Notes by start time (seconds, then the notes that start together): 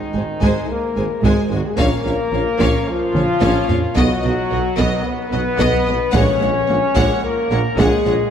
Already playing: D#3 D#4
0.12 G#1 G#2 G#3 C5 G#5
0.41 G#1 G#2 G#3 C5 G#5, taiko
0.68 A#3 A#4
0.95 G#1 G#2 G#3 C5 G#5
1.22 G#1 G#2 G#3 G#4 C5 G#5, taiko
1.50 G#1 G#2 F#3 G#3 F#4 C5 G#5
1.62 G#3
1.66 G#4
1.76 A#1 A#2 A#3 C#4 A#4 C#5 F5, taiko
2.04 A#1 A#2 C#4 C#5 F5
2.32 A#1 A#2 C#4 C#5 F5
2.59 A#1 A#2 C#4 C#5 F5, taiko
2.88 F3 F4
3.14 A#1 A#2 C#4 C#5 F5, taiko mid
3.41 A#1 A#2 C#4 C#5 F5, taiko low-mid
3.68 A#1 A#2 C#4 C#5 F5, taiko low
3.96 B1 B2 F#3 B3 F#4 D#5, taiko
4.21 B1 B2 B3 D#5
4.50 B1 B2 B3 D#5
4.77 B1 B2 B3 D#5, taiko
5.03 B3
5.07 B4
5.31 B1 B2 B3 D#5
5.59 B1 B2 B3 D#5, taiko
5.86 B1 B2 B3 D#5
6.12 A#1 A#2 G#3 C#4 C#5 F#5, taiko
6.40 A#1 A#2 G#3 C#5 F#5
6.67 A#1 A#2 G#3 C#5 F#5
6.95 A#1 A#2 G#3 C#5 F#5, taiko
7.23 A#3 A#4
7.50 A#1 A#2 G#3 C#5 F#5
7.77 A#1 A#2 G#3 G#4 C#5 F#5, taiko
8.04 A#1 A#2 G#3 C#5 F#5